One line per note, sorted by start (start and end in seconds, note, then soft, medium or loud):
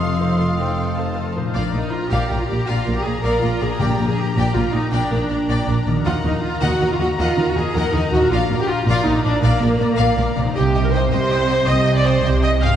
0.00 1.31 F1 soft
0.00 1.31 F2 soft
0.00 1.31 F3 soft
0.00 3.14 F3 soft
0.00 0.38 C4 soft
0.00 0.58 D#4 soft
0.00 0.19 F4 soft
0.00 1.32 A4 soft
0.00 0.19 A4 soft
0.00 0.19 C5 soft
0.00 1.35 D#5 soft
0.00 1.17 D#5 soft
0.00 1.32 F5 soft
0.00 0.96 A5 soft
0.00 0.35 C6 soft
0.00 1.31 C6 soft
0.20 0.39 D#4 soft
0.20 0.78 C5 soft
0.20 0.39 C5 soft
0.38 1.56 C4 soft
0.38 0.58 F4 soft
0.38 0.58 A4 soft
0.38 0.46 C6 soft
0.58 0.78 D#4 soft
0.58 1.56 D#4 soft
0.58 0.78 C5 soft
0.58 0.96 G5 soft
0.78 0.96 F4 soft
0.78 0.96 A4 soft
0.78 1.34 C5 soft
0.96 1.16 D#4 soft
0.96 1.16 C5 soft
0.96 1.54 A5 soft
0.96 1.56 A5 soft
1.15 1.35 F4 soft
1.15 1.35 A4 soft
1.15 1.57 D#5 soft
1.36 3.61 A#2 soft
1.36 1.55 D#4 soft
1.36 1.56 C5 soft
1.36 1.55 C5 soft
1.41 3.66 D4 soft
1.45 3.77 F4 soft
1.50 3.74 A#4 soft
1.50 1.72 D5 medium
1.50 1.72 F5 medium
1.55 1.62 A#1 medium
1.55 1.63 A#2 soft
1.55 1.63 F4 medium
1.55 6.02 A#5 soft
1.74 1.81 A#1 soft
1.74 1.82 A#2 soft
1.74 1.92 D#4 medium
1.74 1.82 A#4 soft
1.74 1.82 D5 soft
1.92 2.11 F4 medium
2.11 2.19 A#1 medium
2.11 2.20 A#2 medium
2.11 2.39 G4 medium
2.11 2.29 D5 medium
2.11 2.29 F5 medium
2.31 2.38 A#1 soft
2.31 2.39 A#2 soft
2.31 2.39 A#4 soft
2.31 2.38 D5 soft
2.40 2.49 F4 medium
2.49 2.57 A#1 soft
2.49 2.58 A#2 soft
2.49 2.68 G4 medium
2.49 2.58 D5 soft
2.68 2.75 A#1 medium
2.68 2.77 A#2 medium
2.68 2.96 F4 medium
2.68 2.85 D5 medium
2.68 2.85 F5 medium
2.86 2.95 A#1 soft
2.86 2.95 A#2 soft
2.86 2.95 A#4 soft
2.86 2.94 D5 soft
2.96 3.05 G4 medium
3.04 3.14 A#1 soft
3.04 3.14 A#2 soft
3.04 3.24 G#4 medium
3.04 3.13 D5 soft
3.23 3.32 A#1 medium
3.23 3.32 A#2 medium
3.23 3.42 A#4 medium
3.23 3.41 D5 soft
3.23 3.41 F5 medium
3.43 3.51 A#1 soft
3.43 3.50 A#2 soft
3.43 3.61 F4 medium
3.43 3.51 A#4 soft
3.43 3.51 D5 soft
3.60 3.69 A#1 soft
3.60 3.69 A#2 soft
3.60 5.98 A#2 soft
3.60 3.81 G#4 medium
3.60 3.69 D5 soft
3.67 6.01 D4 soft
3.71 6.03 G4 soft
3.76 4.32 A#2 medium
3.76 6.00 A#4 soft
3.80 3.88 A#1 medium
3.80 3.88 A#2 medium
3.80 4.09 G4 medium
3.80 3.98 D5 medium
3.80 3.98 G5 medium
3.99 4.06 A#1 soft
3.99 4.08 A#2 soft
3.99 4.08 A#4 soft
3.99 4.07 D5 soft
4.08 4.17 G#4 medium
4.18 4.35 G4 medium
4.36 4.44 A#1 medium
4.36 4.44 A#2 medium
4.36 4.55 G4 medium
4.36 4.53 D5 medium
4.36 4.55 G5 medium
4.54 4.63 A#1 soft
4.54 4.63 A#2 soft
4.54 4.74 F4 medium
4.54 4.62 A#4 soft
4.54 4.62 D5 soft
4.72 4.81 A#1 soft
4.72 4.81 A#2 soft
4.72 4.93 D#4 medium
4.72 4.80 D5 medium
4.92 4.99 A#1 medium
4.92 4.99 A#2 medium
4.92 5.86 D4 medium
4.92 5.10 D5 medium
4.92 5.10 G5 medium
5.10 5.18 A#1 soft
5.10 5.19 A#2 soft
5.10 5.19 A#4 soft
5.10 5.19 D5 soft
5.29 5.38 A#1 soft
5.29 5.38 A#2 soft
5.29 5.38 D5 soft
5.49 5.56 A#1 medium
5.49 5.57 A#2 medium
5.49 5.66 D5 medium
5.49 5.67 G5 medium
5.67 5.75 A#1 soft
5.67 5.76 A#2 soft
5.67 5.76 A#4 soft
5.67 5.75 D5 medium
5.86 5.94 A#1 soft
5.86 5.95 A#2 soft
5.86 8.23 D#3 medium
5.86 5.95 D5 soft
5.92 8.25 D#4 soft
5.96 8.27 F#4 soft
6.01 6.12 D#2 medium
6.01 8.25 A#4 soft
6.01 6.23 D#5 medium
6.01 6.22 F#5 medium
6.05 6.13 D#3 medium
6.05 6.13 F4 medium
6.05 10.50 A#5 medium
6.24 6.32 D#2 soft
6.24 6.32 D#3 soft
6.24 6.43 D#4 medium
6.24 6.33 A#4 soft
6.24 6.33 D#5 soft
6.42 6.61 F4 medium
6.61 6.69 D#2 medium
6.61 6.69 D#3 medium
6.61 6.90 F#4 medium
6.61 6.79 D#5 medium
6.61 6.79 F#5 medium
6.81 6.89 D#2 soft
6.81 6.89 D#3 soft
6.81 6.89 A#4 soft
6.81 6.88 D#5 soft
6.92 6.95 F4 medium
6.99 7.08 D#2 soft
6.99 7.07 D#3 soft
6.99 7.08 F#4 medium
6.99 7.08 D#5 medium
7.18 7.25 D#2 medium
7.18 7.27 D#3 medium
7.18 7.47 F4 medium
7.18 7.36 D#5 medium
7.18 7.36 F#5 medium
7.37 7.45 D#2 soft
7.37 7.45 D#3 soft
7.37 7.46 A#4 soft
7.37 7.46 D#5 medium
7.48 7.57 F#4 medium
7.56 7.64 D#2 soft
7.56 7.63 D#3 soft
7.56 7.75 G#4 medium
7.56 7.65 D#5 medium
7.74 7.82 D#2 medium
7.74 7.82 D#3 medium
7.74 7.93 A#4 medium
7.74 7.93 D#5 medium
7.74 7.93 F#5 medium
7.93 8.00 D#2 medium
7.93 8.01 D#3 soft
7.93 8.12 D#4 medium
7.93 8.02 A#4 medium
7.93 8.02 D#5 medium
8.12 8.19 D#2 medium
8.12 10.48 A#2 medium
8.12 8.20 D#3 medium
8.12 8.30 F#4 medium
8.12 8.22 D#5 medium
8.18 10.50 D4 soft
8.22 10.52 F4 soft
8.27 8.38 A#2 medium
8.27 8.38 F4 medium
8.27 10.54 A#4 soft
8.31 8.38 A#1 medium
8.31 8.49 D5 medium
8.31 8.49 F5 medium
8.50 8.57 A#1 medium
8.50 8.57 A#2 medium
8.50 8.59 A#4 soft
8.50 8.59 D5 soft
8.59 8.68 G4 medium
8.68 8.85 F4 medium
8.86 8.95 A#1 medium
8.86 8.94 A#2 medium
8.86 9.04 F4 medium
8.86 9.05 D5 medium
8.86 9.05 F5 medium
9.04 9.14 A#1 medium
9.04 9.13 A#2 soft
9.04 9.23 D#4 medium
9.04 9.15 A#4 medium
9.04 9.15 D5 medium
9.24 9.32 A#1 medium
9.24 9.31 A#2 soft
9.24 9.42 D4 medium
9.24 9.32 D5 medium
9.42 9.51 A#1 medium
9.42 9.50 A#2 medium
9.42 10.34 A#3 medium
9.42 9.61 D5 medium
9.42 9.60 F5 medium
9.61 9.69 A#1 medium
9.61 9.68 A#2 medium
9.61 9.69 A#4 medium
9.61 9.69 D5 medium
9.80 9.87 A#1 medium
9.80 9.88 A#2 medium
9.80 9.88 D5 medium
9.97 10.06 A#1 medium
9.97 10.06 A#2 medium
9.97 10.15 D5 medium
9.97 10.15 F5 medium
10.18 10.25 A#1 medium
10.18 10.25 A#2 medium
10.18 10.26 A#4 medium
10.18 10.26 D5 medium
10.36 10.44 A#1 medium
10.36 10.44 A#2 medium
10.36 12.71 C3 medium
10.36 10.44 D5 medium
10.40 12.65 C4 medium
10.45 12.70 D#4 medium
10.50 12.76 G4 medium
10.55 11.05 C2 medium
10.55 11.05 C3 medium
10.55 10.81 G4 medium
10.55 10.63 D#5 medium
10.55 10.64 G5 medium
10.75 10.82 D#5 medium
10.75 10.82 G5 medium
10.84 10.93 A#4 medium
10.93 11.11 C5 medium
10.93 11.02 D#5 medium
10.93 11.01 G5 medium
11.11 11.60 C2 medium
11.11 11.61 C3 medium
11.11 11.66 C5 loud
11.11 11.19 D#5 medium
11.11 11.19 G5 medium
11.30 11.38 D#5 medium
11.30 11.37 G5 medium
11.48 11.56 D#5 medium
11.48 11.56 G5 medium
11.66 12.17 C2 medium
11.66 12.17 C3 medium
11.66 11.74 D#5 medium
11.66 11.95 D#5 loud
11.66 11.74 G5 medium
11.86 11.93 D#5 medium
11.86 11.94 G5 medium
11.95 12.04 D5 medium
12.04 12.42 C5 medium
12.04 12.12 D#5 medium
12.04 12.12 G5 medium
12.23 12.73 C2 medium
12.23 12.73 C3 medium
12.23 12.31 D#5 medium
12.23 12.32 G5 medium
12.42 12.50 D#5 loud
12.42 12.51 D#5 medium
12.42 12.49 G5 medium
12.62 12.76 G#2 medium
12.62 12.69 D#5 medium
12.62 12.76 F5 medium
12.62 12.70 G5 medium
12.66 12.76 C4 medium
12.71 12.76 D#4 medium